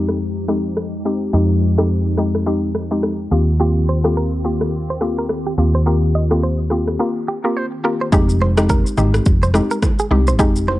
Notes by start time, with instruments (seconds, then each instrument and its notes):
Already playing: fingered electric bass F2, analog synth pad F3 G#3 D#4 G4, synth pluck G#3 C4 D#4 G4
0.09 cross-stick
0.48 synth pluck G#3 C4 D#4 G4, cross-stick
0.77 cross-stick
1.05 synth pluck G#3 C4 D#4 G4
1.33 fingered electric bass F2, synth pluck G#3 C4 D#4 G4
1.78 synth pluck G#3 C4 D#4 G4, cross-stick
2.18 synth pluck G#3 C4 D#4 G4, cross-stick
2.35 cross-stick
2.46 synth pluck G#3 C4 D#4 G4
2.75 cross-stick
2.91 synth pluck G#3 C4 D#4 G4
3.03 cross-stick
3.31 fingered electric bass D#2, analog synth pad D#3 C4 F4 G4, synth pluck A#3 C4 F4 G4
3.60 synth pluck A#3 C4 F4 G4, clean electric guitar G4
3.89 clean electric guitar C5
4.04 synth pluck A#3 C4 F4 G4, cross-stick
4.17 clean electric guitar A#4
4.45 synth pluck A#3 C4 F4 G4
4.61 cross-stick
4.90 clean electric guitar C5
5.01 synth pluck A#3 C4 F4 G4, cross-stick
5.19 clean electric guitar A#4
5.29 cross-stick
5.47 clean electric guitar G4
5.58 fingered electric bass D#2, synth pluck A#3 C4 F4 G4
5.75 clean electric guitar C5
5.86 synth pluck A#3 C4 F4 G4, clean electric guitar A#4, shaker
6.03 shaker
6.15 clean electric guitar D#5, shaker
6.31 synth pluck A#3 C4 F4 G4, cross-stick, shaker
6.43 clean electric guitar C5, shaker
6.60 shaker
6.70 synth pluck A#3 C4 F4 G4, cross-stick, shaker
6.88 cross-stick, shaker
6.99 synth pluck A#3 C4 F4 G4, clean electric guitar A#4
7.28 clean electric guitar G4
7.44 synth pluck A#3 C4 F4 G4, clean electric guitar A#4
7.57 clean electric guitar C5
7.84 synth pluck A#3 C4 F4 G4, clean electric guitar A#4
8.01 clean electric guitar C5
8.12 fingered electric bass F1, synth pluck G#3 C4 D#4 G4, clean electric guitar G#4, kick, shaker
8.29 shaker
8.41 clean electric guitar C5, high conga
8.57 synth pluck G#3 C4 D#4 G4, cross-stick, high conga, shaker
8.69 clean electric guitar A#4, kick, low conga, shaker
8.86 shaker
8.97 fingered electric bass G#1, synth pluck G#3 C4 D#4 G4, low conga, shaker
9.14 cross-stick, shaker
9.26 fingered electric bass F1, kick, shaker
9.43 clean electric guitar C5, high conga, shaker
9.54 synth pluck G#3 C4 D#4 G4, cross-stick, high conga, shaker
9.71 clean electric guitar A#4, shaker
9.83 kick, cross-stick, high conga, low conga, shaker
9.99 clean electric guitar G#4, shaker
10.11 fingered electric bass C2, synth pluck G#3 C4 D#4 G4, high conga
10.27 clean electric guitar C5, high conga, shaker
10.39 fingered electric bass F1, synth pluck G#3 C4 D#4 G4, clean electric guitar G#4, kick, shaker
10.56 shaker
10.68 clean electric guitar C5, high conga